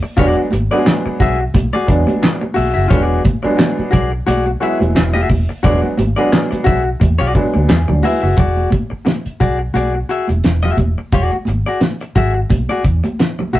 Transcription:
0.03 muted clean electric guitar stroke
0.17 E1 F#3 G#3 B3 D4 F#4 G#4 D5, kick, closed hi-hat, low conga
0.37 muted clean electric guitar stroke
0.51 G#1, muted clean electric guitar stroke, closed hi-hat, high conga
0.71 F#3 G3 B3 D4 F#4 G#4 D5
0.78 G#3
0.85 snare, clap, closed hi-hat, muted conga, high conga
1.06 muted clean electric guitar stroke, muted fingered electric bass stroke
1.20 B1 F#4 G#4 E5, kick, closed hi-hat, low conga
1.40 muted clean electric guitar stroke
1.54 B1, muted clean electric guitar stroke, kick, closed hi-hat, muted conga, high conga
1.73 F#4 G#4 D5, muted conga
1.87 E2 F#3 G#3 B3 D4, muted clean electric guitar stroke, kick, closed hi-hat
2.07 muted clean electric guitar stroke, closed hi-hat, high conga
2.23 muted clean electric guitar stroke, snare, clap, closed hi-hat
2.41 muted clean electric guitar stroke, high conga
2.54 B1 F#4 G#4 E5, open hi-hat, high conga
2.74 F#1 F#4 G#4 E5
2.88 E1 F#3 G#3 B3 D4 F4 G4 C#5, kick, closed hi-hat, muted conga, low conga
3.02 F#4 G#4 D5
3.24 kick, closed hi-hat, high conga
3.43 F#3 G#3 B3 D4, muted clean electric guitar stroke, muted fingered electric bass stroke
3.57 muted clean electric guitar stroke, snare, clap, closed hi-hat, high conga
3.79 muted fingered electric bass stroke, muted conga
3.91 B1 F#4 G#4 D5, kick, closed hi-hat, low conga
4.12 muted clean electric guitar stroke
4.27 B1 F#4 G#4 D5, closed hi-hat, high conga
4.46 muted clean electric guitar stroke, muted conga
4.60 F#3 G#3 B3 E4 F#4 G#4 E5, closed hi-hat
4.80 E1, muted clean electric guitar stroke, closed hi-hat, high conga
4.95 E1, muted clean electric guitar stroke, snare, clap, closed hi-hat, muted conga
5.14 F#4 G#4 E5, high conga
5.30 E1, muted clean electric guitar stroke, kick, open hi-hat, high conga
5.49 muted clean electric guitar stroke
5.63 E1 F#3 G#3 B3 D4 F#4 G#4 D5, kick, closed hi-hat, muted conga, low conga
5.82 muted clean electric guitar stroke, muted conga
5.97 G#1, muted clean electric guitar stroke, closed hi-hat, high conga
6.16 F#3 G#3 B3 D4 F#4 G#4 D5
6.32 snare, clap, closed hi-hat, muted conga, high conga
6.51 muted clean electric guitar stroke, muted fingered electric bass stroke, closed hi-hat, muted conga
6.64 B1 F#4 G#4 E5, kick, closed hi-hat, low conga
6.84 muted clean electric guitar stroke
7.00 E2, muted clean electric guitar stroke, kick, closed hi-hat, muted conga, high conga
7.19 B1 F#4 G#4 D5
7.34 F#3 G#3 B3 D4, muted clean electric guitar stroke, kick, closed hi-hat
7.54 D2, muted clean electric guitar stroke, high conga
7.69 E2 G#4, muted clean electric guitar stroke, snare, clap, closed hi-hat, muted conga
7.88 D2 F#3 D4, muted clean electric guitar stroke, muted conga, high conga, low conga
8.03 G#3 E4 F#4 G#4 B4 E5, open hi-hat, high conga
8.22 F#1 F#4 G#4 E5
8.37 E1 F#4 G#4 D5, kick, closed hi-hat, muted conga, low conga
8.57 muted conga
8.70 kick, closed hi-hat, high conga
8.90 muted clean electric guitar stroke, muted fingered electric bass stroke
9.05 muted clean electric guitar stroke, snare, closed hi-hat, muted conga, high conga
9.26 muted fingered electric bass stroke, closed hi-hat
9.40 B1 F#4 G#4 D5, kick, closed hi-hat, low conga
9.59 muted clean electric guitar stroke
9.74 B1 F#4 G#4 D5, closed hi-hat, high conga
9.94 muted clean electric guitar stroke
10.09 F#4 G#4 E5, closed hi-hat
10.28 E1, muted clean electric guitar stroke, closed hi-hat, high conga
10.44 E1, muted clean electric guitar stroke, snare, closed hi-hat
10.63 F#4 G#4 E5, high conga, low conga
10.77 E1, muted clean electric guitar stroke, kick, closed hi-hat, high conga
10.98 muted clean electric guitar stroke
11.12 E1 F#4 G#4 D5, kick, closed hi-hat, muted conga, low conga
11.32 muted clean electric guitar stroke, muted conga
11.45 G#1, muted clean electric guitar stroke, closed hi-hat, high conga
11.66 F#4 G#4 D5
11.81 muted clean electric guitar stroke, snare, closed hi-hat, muted conga, high conga
12.00 muted clean electric guitar stroke, closed hi-hat
12.15 G#1 F#4 G#4 E5, kick, closed hi-hat, low conga
12.34 muted clean electric guitar stroke
12.50 B1, muted clean electric guitar stroke, kick, closed hi-hat, muted conga, high conga
12.69 F#4 G#4 D5, muted conga
12.84 E2, muted clean electric guitar stroke, kick, closed hi-hat
13.04 muted clean electric guitar stroke, closed hi-hat, high conga
13.19 muted clean electric guitar stroke, snare, closed hi-hat
13.39 muted clean electric guitar stroke, high conga, low conga
13.53 B1 F#4 G#4 E5, closed hi-hat, high conga

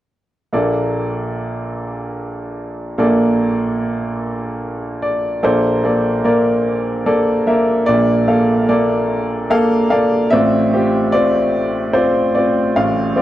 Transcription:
0.53 A#1 A#2 A#3 A4 D5
2.98 A#1 A#2 A#3 A4 D5
5.02 D5
5.43 A#1 A#2 A#3 A4 C5 D5
5.84 A#3 A4 D5
6.24 A#3 A#4 D5
7.06 A#3 A4 D5
7.47 A#3 A#4 E5
7.86 A#1 A#2 D5
8.28 A#3 A4 F5
8.68 A#3 A4 D5
9.50 A#3 A4 F5
9.90 A#3 A4 D5 F5
10.30 A1 A2 C4 F4 D5 E5
10.73 C4 F4 G4
11.12 C4 F4 D5
11.93 C4 F4 C5 D5
12.35 C4 F4 D5
12.76 A1 A2 F5
13.16 C4 F4 D5

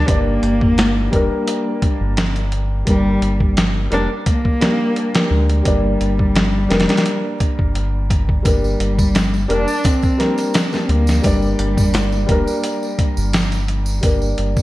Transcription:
Already playing: D4
0.06 G1 G3 A#3 D4, kick, closed hi-hat
0.11 D5
0.42 G1, closed hi-hat
0.61 kick
0.78 snare, closed hi-hat
1.11 F1 G3 A#3 D4, kick, closed hi-hat
1.16 A#4
1.48 closed hi-hat
1.82 kick, closed hi-hat
2.00 G1
2.17 snare, closed hi-hat
2.36 closed hi-hat
2.52 closed hi-hat
2.85 G1 G3 A#3 D4, kick, closed hi-hat
2.90 A#4
3.21 G1, closed hi-hat
3.40 kick
3.57 snare, closed hi-hat
3.90 F1 G3 A#3 D4 A#4, closed hi-hat
4.26 A#3, kick, closed hi-hat
4.45 kick
4.60 G3 A#3 D4 A#4, snare, closed hi-hat
4.96 closed hi-hat
5.14 A#3 D4 G4 A#4, snare, closed hi-hat
5.30 D2 G#3
5.50 closed hi-hat
5.63 G1 G3 A#3 D4, kick, closed hi-hat
5.68 D5
6.00 G1, closed hi-hat
6.19 kick
6.35 snare, closed hi-hat
6.69 F1 G3 A#3 D4, snare, closed hi-hat
6.74 A#4
6.80 snare, closed hi-hat
6.89 snare, closed hi-hat
6.97 snare, closed hi-hat
7.06 closed hi-hat
7.40 kick, closed hi-hat
7.59 G1, kick
7.75 closed hi-hat
8.10 kick, closed hi-hat
8.29 kick
8.43 G1 G3 A#3 D4, kick, closed hi-hat, tambourine
8.47 G3 A#4
8.64 tambourine
8.79 G1, closed hi-hat
8.99 kick, tambourine
9.15 snare, closed hi-hat, tambourine
9.34 tambourine
9.48 F1 G3 A#3 D4 A#4, closed hi-hat
9.68 tambourine
9.84 C4, kick, closed hi-hat, tambourine
10.02 kick, tambourine
10.18 G3 A#3 D4 A#4, snare, closed hi-hat
10.38 closed hi-hat, tambourine
10.54 snare, closed hi-hat, tambourine
10.71 G3 A#3 D4 A#4, snare, tambourine
10.85 D2 C4
10.89 A#3, closed hi-hat
11.07 snare, tambourine
11.22 G1 G3 A#3 D4, kick, closed hi-hat, tambourine
11.26 D5
11.42 tambourine
11.59 G1, closed hi-hat
11.77 kick, tambourine
11.94 snare, closed hi-hat, tambourine
12.12 tambourine
12.26 F1 G3 A#3 D4, kick, closed hi-hat
12.31 A#4
12.48 tambourine
12.64 closed hi-hat, tambourine
12.83 tambourine
12.99 kick, closed hi-hat
13.17 G1, tambourine
13.33 snare, closed hi-hat, tambourine
13.52 closed hi-hat, tambourine
13.68 closed hi-hat
13.86 tambourine
14.01 G1 G3 A#3 D4, kick, closed hi-hat, tambourine
14.06 A#4
14.22 tambourine
14.38 G1, closed hi-hat
14.57 kick, tambourine

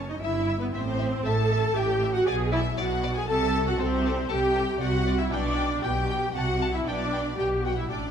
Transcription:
Already playing: F#1 F#2
0.09 D#4 D#5
0.20 G1 G2 E4 E5
0.49 E5
0.60 B3 B4
0.73 A1 A2 C4 C5 E5
0.98 E5
1.24 A1 A2 A4 E5 A5
1.51 E5
1.75 A1 A2 G4 E5 G5
2.02 E5
2.14 F#4 F#5
2.26 B1 B2 G#4 D5 G#5
2.52 E4 D5 E5
2.78 B1 B2 F#4 D5 F#5
3.03 D5
3.16 G#4 G#5
3.27 C2 C3 A4 A5
3.53 A4
3.67 F#4 F#5
3.79 C2 C3 C4 A4 C5
4.06 A4
4.29 C2 C3 G4 A4 G5
4.55 A4
4.80 C2 C3 F#4 D5 F#5
5.06 D5
5.19 E4 E5
5.32 B1 B2 D4 D5 G5
5.57 G5
5.83 B1 B2 G4 G5
6.09 G5
6.33 C2 C3 F#4 F#5 A5
6.61 A5
6.73 E4 E5
6.85 B1 B2 D4 D5 G5
7.13 G5
7.37 B1 B2 G4 G5
7.63 F#4 F#5 G5
7.77 E4 E5
7.90 A1 A2 D4 D5 G5

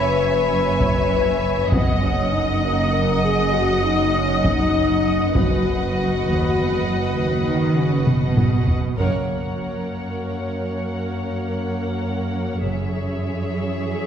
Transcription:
Already playing: F#1 F#2 B4 C#5 E5 G#5
0.80 taiko
1.71 F#1 F#2 B3 D#5 F#5, taiko
2.02 C#4
2.33 D#4
2.64 A#3
2.93 A#4
3.24 G#4
3.54 F#4
3.84 D#4
4.14 C#4
4.45 D#4, taiko
5.34 F#1 F#2 F#4 B4 D#5 F#5, taiko
6.26 D#2
6.56 E2
6.87 F#2
7.16 D#2
7.47 D#3
7.77 C#3
8.07 B2, taiko mid
8.37 taiko low-mid
8.67 taiko low
8.98 F#1 F#2 F#3 A#3 A#4 C#5 F#5, taiko
12.62 F#1 F#2 E3 C#4 G#4 C#5 E5

